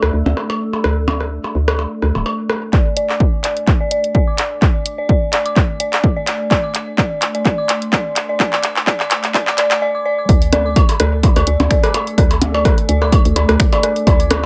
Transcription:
Already playing: ambient pad A3 A4 D5 E6
0.02 fm bass D2, cross-stick, percussion blips
0.13 fm bass D2
0.26 fm bass D2, percussion blips
0.37 cross-stick, percussion blips
0.50 percussion blips
0.73 percussion blips
0.84 fm bass D2, cross-stick
1.08 percussion blips
1.21 cross-stick
1.44 percussion blips
1.55 fm bass D2
1.68 cross-stick, percussion blips
1.79 percussion blips
2.02 fm bass D2, cross-stick
2.15 fm bass D1, percussion blips
2.26 percussion blips
2.50 cross-stick, percussion blips
2.73 synth bell D5, kick, clap
2.97 synth bell D5, closed hi-hat
3.09 synth bell D6, clap
3.20 ambient pad D6, kick
3.44 synth bell D5, clap, closed hi-hat
3.57 closed hi-hat
3.67 kick, clap
3.80 synth bell D5
3.91 synth bell D5, closed hi-hat
4.04 closed hi-hat
4.15 synth bell D5, kick
4.27 synth bell D6
4.38 clap, closed hi-hat
4.62 synth bell D5, kick, clap
4.86 closed hi-hat
4.98 synth bell D5
5.09 synth bell D5, kick
5.33 synth bell D5, clap, closed hi-hat
5.46 synth bell D6, closed hi-hat
5.56 kick, clap
5.80 synth bell D5, closed hi-hat
5.93 clap, closed hi-hat
6.04 kick
6.16 synth bell D5
6.27 synth bell D5, clap, closed hi-hat
6.51 synth bell D5, kick, clap
6.64 ambient pad C6, synth bell D6
6.75 clap, closed hi-hat
6.98 synth bell D5, kick, clap
7.22 clap, closed hi-hat
7.34 synth bell D5, closed hi-hat
7.45 synth bell D5, kick, clap
7.58 synth bell D6
7.69 clap, closed hi-hat
7.82 closed hi-hat
7.93 synth bell D5, kick, clap
8.16 clap, closed hi-hat
8.29 synth bell D5
8.40 synth bell D5, kick, clap
8.53 synth bell D6, clap
8.63 clap, closed hi-hat
8.76 clap
8.87 synth bell D5, kick, clap
9.00 synth bell D6, clap
9.11 clap, closed hi-hat
9.24 clap, closed hi-hat
9.34 synth bell D5, kick, clap
9.47 synth bell D6, clap
9.58 synth bell D5, clap, closed hi-hat
9.71 synth bell D6, clap, closed hi-hat
9.82 synth bell D5
9.95 synth bell D6
10.05 synth bell D5
10.18 synth bell D6
10.29 fm bass D2, ambient pad A3, synth texture A3 A4, synth bell D5, kick, closed hi-hat
10.37 ambient pad A4
10.42 closed hi-hat
10.53 synth bell D5, cross-stick, closed hi-hat, percussion blips
10.66 synth bell D6
10.76 kick, closed hi-hat, percussion blips
10.89 closed hi-hat, percussion blips
10.94 ambient pad D6
11.00 fm bass D2, synth bell D5, cross-stick, closed hi-hat
11.17 ambient pad D5
11.23 kick, closed hi-hat, percussion blips
11.36 fm bass D2, synth bell D5, cross-stick, closed hi-hat, percussion blips
11.47 fm bass D2, synth bell D5, closed hi-hat
11.60 fm bass D2, closed hi-hat, percussion blips
11.71 synth bell D5, finger snap, kick, closed hi-hat
11.83 synth bell D6, cross-stick, closed hi-hat
11.94 closed hi-hat, percussion blips
12.07 closed hi-hat
12.18 fm bass D2, synth bell D5, kick, cross-stick, closed hi-hat
12.31 closed hi-hat, percussion blips
12.42 closed hi-hat, percussion blips
12.54 synth bell D5, percussion blips
12.65 kick, cross-stick, closed hi-hat, percussion blips
12.78 closed hi-hat
12.89 fm bass D2, synth bell D5, closed hi-hat
13.02 synth bell D6, cross-stick, percussion blips
13.12 kick, closed hi-hat, percussion blips
13.25 fm bass D2, closed hi-hat
13.36 fm bass D2, synth bell D5, closed hi-hat, percussion blips
13.49 fm bass D2, cross-stick, closed hi-hat
13.60 finger snap, kick, closed hi-hat
13.73 synth bell D5, closed hi-hat, percussion blips
13.83 synth bell D5, cross-stick, closed hi-hat
13.96 closed hi-hat
14.07 fm bass D2, synth texture F4, synth bell D5, kick, closed hi-hat, percussion blips
14.20 synth bell D6, closed hi-hat
14.31 cross-stick, closed hi-hat, percussion blips

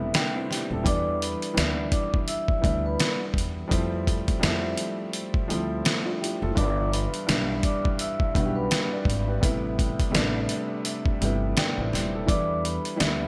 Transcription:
Already playing: upright piano C3 G3 A3 B3 D4 E4 D5 E5
0.14 upright piano B3 D4 G5, snare, closed hi-hat
0.35 upright piano C4 E4
0.51 upright piano E4 G4, snare, closed hi-hat
0.71 upright bass D#1, upright piano A4
0.83 upright bass E2, upright piano E3 G3 B3 D4, vibraphone D5 D6, kick, closed hi-hat
0.88 upright piano E4
1.22 vibraphone B4 B5, closed hi-hat
1.42 closed hi-hat
1.53 upright bass D2, upright piano E3 G3 B3 D4
1.57 upright piano E4, snare, closed hi-hat
1.92 vibraphone D5 D6, kick, closed hi-hat
2.14 kick
2.28 vibraphone E5 E6, closed hi-hat
2.48 kick
2.61 upright bass D2, upright piano E3 G3 B3 D4, kick, closed hi-hat
2.65 upright piano E4
2.86 vibraphone B4 B5
3.00 snare, closed hi-hat
3.34 upright bass E2, kick
3.38 closed hi-hat
3.68 upright bass F2, upright piano F3 G3 A3 C4, kick
3.72 upright piano E4, closed hi-hat
4.07 kick, closed hi-hat
4.28 kick, closed hi-hat
4.39 upright bass F2, upright piano F3 G3 A3 C4, snare, closed hi-hat
4.44 upright piano E4
4.77 closed hi-hat
5.13 closed hi-hat
5.34 kick
5.48 upright bass D2, upright piano F3 G3 A3 C4, closed hi-hat
5.52 upright piano E4
5.85 snare, closed hi-hat
6.05 upright piano D4 F4
6.21 upright piano E4 G4, closed hi-hat
6.42 upright bass F#1, upright piano F4 A4
6.55 upright bass G1, upright piano G2 E3 G3 B3 D4, vibraphone D5 D6, kick, closed hi-hat
6.60 upright piano E4
6.92 vibraphone B4 B5, closed hi-hat
7.14 closed hi-hat
7.27 upright bass B1, upright piano G2 E3 G3 B3 D4, snare, closed hi-hat
7.31 upright piano E4
7.63 vibraphone D5 D6, kick, closed hi-hat
7.85 kick
7.99 vibraphone E5 E6, closed hi-hat
8.20 kick
8.34 upright bass B1, upright piano G2 E3 G3 B3 D4, kick, closed hi-hat
8.38 upright piano F#4
8.45 upright piano G4
8.56 vibraphone B4 B5
8.71 upright piano E5 G5, snare, closed hi-hat
8.93 upright piano B4 D5
9.05 upright bass G#1, kick
9.10 closed hi-hat
9.28 upright piano G4 B4
9.40 upright bass A1, upright piano C3 G3 A3 B3, kick, closed hi-hat
9.45 upright piano E4
9.79 kick, closed hi-hat
10.00 kick, closed hi-hat
10.11 upright bass A1, upright piano C3 G3 A3 B3
10.15 upright piano D4, snare, closed hi-hat
10.49 upright piano D5, closed hi-hat
10.85 upright piano E5, closed hi-hat
11.06 kick
11.21 upright bass G1, upright piano C3 G3 A3 B3, closed hi-hat
11.25 upright piano E4
11.57 upright piano B3 D4 G5, snare, closed hi-hat
11.78 upright bass A1, upright piano C4 E4
11.93 upright bass D#1, upright piano E4 G4, snare, closed hi-hat
12.15 upright piano A4
12.26 upright bass E2, upright piano E3 G3 B3 D4, vibraphone D5 D6, kick, closed hi-hat
12.30 upright piano E4
12.65 vibraphone B4 B5, closed hi-hat
12.85 closed hi-hat
12.96 upright bass D2, upright piano E3 G3 B3 D4
13.00 upright piano E4, snare, closed hi-hat

